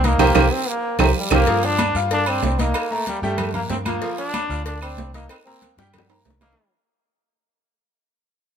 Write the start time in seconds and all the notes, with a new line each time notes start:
Already playing: C2
0.04 A#3 D#4 D#5 D#6, cowbell, high conga, low agogo, short guiro
0.18 C2 G4 A#4 C5, cowbell, low conga, high timbale, long guiro, claves
0.35 C2 G4 A#4 C5, cowbell, low conga, high timbale, long guiro, claves
0.53 C4
0.68 A#3
0.99 C2 A3 G4 A#4 C5, cowbell, low conga, high timbale, long guiro, claves
1.18 G3
1.31 C2 A#3 G4 A#4 C5, cowbell, low conga, high timbale, long guiro, claves
1.47 G2 F3 F4 F5, cowbell, high conga, long guiro
1.63 D4, high conga, low agogo
1.78 D4 D5 D6, cowbell, high conga, low agogo, short guiro, claves
1.95 G2 F4 F5 F6, high conga, short guiro
2.11 D4, cowbell, high conga, low agogo, long guiro
2.26 C4 D4 D5 D6, high conga, low agogo, claves
2.43 C2 C4, cowbell, high conga, low timbale, short guiro
2.59 A#3 D#4 D#5 D#6, cowbell, high conga, low agogo, short guiro
2.74 cowbell, high conga, low agogo, long guiro, claves
2.91 A3 A#3 A#4 A#5, high conga
3.06 G3, cowbell, high conga, low agogo, short guiro
3.22 G2 G3 A3 G4 G5, high conga, short guiro
3.38 cowbell, high conga, low conga, low agogo, long guiro, claves
3.54 A#3 A#4 A#5, high conga, low conga, low agogo
3.70 G2 C4, cowbell, high conga, low timbale, short guiro
3.85 F3 A#3 F4 F5, cowbell, high conga, low agogo, short guiro, claves
4.02 F3 F4 F5, cowbell, high conga, long guiro
4.18 D4, high conga, low agogo
4.34 D4 D5 D6, cowbell, high conga, low agogo, short guiro, claves
4.49 D2 F4 F5 F6, short guiro
4.66 D4, cowbell, high conga, low agogo, long guiro
4.81 C4 D4 D5 D6, high conga, low agogo, claves
4.97 C2, cowbell, high conga, low timbale, short guiro
5.14 A#3 D#4 D#5 D#6, cowbell, high conga, low agogo, short guiro
5.29 C4, cowbell, high conga, low agogo, long guiro, claves
5.45 A#3 C4 A#4 A#5, high conga
5.62 cowbell, high conga, low agogo, short guiro
5.77 G2 G3 G4 G5, high bongo, short guiro
5.93 cowbell, high conga, low conga, low agogo, long guiro, claves
5.98 high bongo
6.10 A#3 A#4 A#5, high conga, high timbale, low agogo
6.25 C2, cowbell, high conga, low timbale, short guiro
6.30 low bongo
6.41 D#3 A#3 D#4 D#5, cowbell, low bongo, high conga, low timbale, low agogo, short guiro, claves
6.53 low bongo